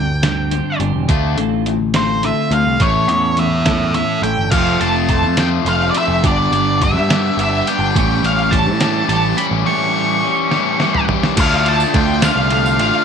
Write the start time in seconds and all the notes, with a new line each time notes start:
Already playing: D2 G2 D3 G5
0.23 G2 D3 G3 C4 D4 G4, snare, closed hi-hat
0.51 G2 D3 G3 C4 D4 G4, closed hi-hat
0.79 G1 G2 D3 G3 C4 D4 G4, closed hi-hat
0.94 E1
1.09 D2 D3 A3 C4 D4 F4 A4, kick, closed hi-hat
1.36 A1 D3 A3 C4 F4 A4, closed hi-hat
1.66 D3 A3, closed hi-hat
1.94 D3 A3 C4 F4 A4 C5, snare, closed hi-hat
2.22 D3 A3 C4 F4 A4 E5, closed hi-hat
2.51 D2 D3 A3 C4 F4 A4 F5, closed hi-hat
2.65 C2
2.80 A1 A2 E3 A3 C#4 E4 A4 C#5, kick, closed hi-hat
3.08 E2 A2 E3 A3 C#4 E4 A4, closed hi-hat
3.37 A2 E3 E5, closed hi-hat
3.66 A2 E3 A3 C#4 E4 A4, kick, snare, closed hi-hat
3.94 A2 E3 A3 C#4 E4 A4 E5, closed hi-hat
4.22 A1 A2 E3 A3 C#4 E4 A4 G5, closed hi-hat
4.37 G1
4.52 F1 F3 A3 C4 F4 A4 F5, kick, closed hi-hat, crash
4.80 F1 A3 C4 F4 A4 A5, closed hi-hat
5.09 F3 C4 A4 A5, kick, closed hi-hat
5.22 F2
5.37 F3 A3 C4 F4 A4 G5, snare, closed hi-hat
5.65 F1 F3 A3 C4 F4 A4 F5, closed hi-hat
5.91 F4 A4 D5, closed hi-hat
5.95 A3 C4 E4 E5
6.08 F1
6.23 G1 G2 D3 G3 B3 D4 G4, kick, closed hi-hat
6.27 D5
6.52 G1 G3 B3 D4 G4, closed hi-hat
6.80 G3 B3 D4 G4 E5, kick, closed hi-hat
6.93 G2
7.09 G2 D3 G3 B3 D4 G4, snare, closed hi-hat
7.37 G1 G3 B3 D4 G4, closed hi-hat
7.41 E5
7.66 G3 B3 D4 G4 G5, closed hi-hat
7.79 G1
7.95 A1 A2 E3 G3 C#4 G4, kick, closed hi-hat
8.22 A1 G3 C#4 G4 F5, closed hi-hat
8.51 E3 G3 C#4 G4 A5, kick, closed hi-hat
8.66 A2
8.80 A2 E3 G3 C#4 G4, snare, closed hi-hat
9.09 A1 E3 G3 C#4 G4 A5, closed hi-hat
9.37 G3 C#4 G4 B5, closed hi-hat
9.51 A1
9.66 A2 E3 G3 C#4 G4 C#6
9.94 G3 C#4 G4
10.23 E3 G3 C#4 G4
10.51 A2 E3 G3 C#4 G4, snare
10.80 E3 G3 C#4 G4, snare
10.95 mid tom
11.09 G3 C#4 G4, floor tom
11.23 snare
11.37 D2 D3 A3 D4 F4 D5 F5 C6, kick, crash, ride, tambourine
11.52 tambourine
11.66 A5, ride
11.80 tambourine
11.94 D2 D3 A3 D4 F4 G5, kick, ride
12.22 D3 A3 C4 D4 F4 F5, snare, ride, tambourine
12.36 C2
12.50 A3 F5, ride
12.66 tambourine
12.78 A1 A3 D4 F4 F5, ride